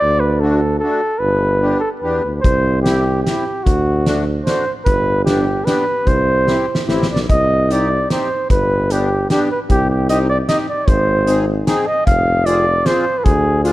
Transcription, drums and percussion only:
2.44 kick medium
2.44 closed hi-hat soft
2.86 snare medium
2.86 closed hi-hat soft
3.27 snare soft
3.27 closed hi-hat soft
3.66 kick medium
3.66 closed hi-hat soft
4.06 snare medium
4.06 closed hi-hat soft
4.47 snare medium
4.47 closed hi-hat soft
4.86 kick medium
4.86 closed hi-hat soft
5.27 snare medium
5.27 closed hi-hat soft
5.67 snare medium
5.67 closed hi-hat soft
6.07 kick medium
6.07 closed hi-hat soft
6.47 snare soft
6.75 snare medium
6.89 snare soft
7.03 snare medium
7.16 snare medium
7.29 kick medium
7.29 closed hi-hat soft
7.71 closed hi-hat soft
8.10 snare medium
8.10 closed hi-hat soft
8.50 kick medium
8.50 closed hi-hat soft
8.90 closed hi-hat soft
9.30 snare medium
9.30 closed hi-hat soft
9.70 kick medium
9.70 closed hi-hat soft
10.09 closed hi-hat soft
10.49 snare soft
10.49 closed hi-hat soft
10.88 kick medium
10.88 closed hi-hat soft
11.27 closed hi-hat soft
11.67 snare medium
11.67 closed hi-hat soft
12.07 kick medium
12.07 closed hi-hat soft
12.46 closed hi-hat soft
12.86 snare medium
12.86 closed hi-hat soft
13.26 kick medium
13.26 closed hi-hat soft
13.65 closed hi-hat soft

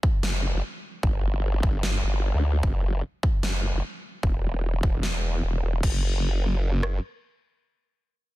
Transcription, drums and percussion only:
0.03 kick loud
0.23 snare loud
1.03 kick loud
1.63 kick loud
1.83 snare loud
2.63 kick loud
3.23 kick medium
3.43 snare loud
4.23 kick loud
4.83 kick medium
5.03 snare loud
5.83 kick loud
5.83 crash medium
6.83 cross-stick medium

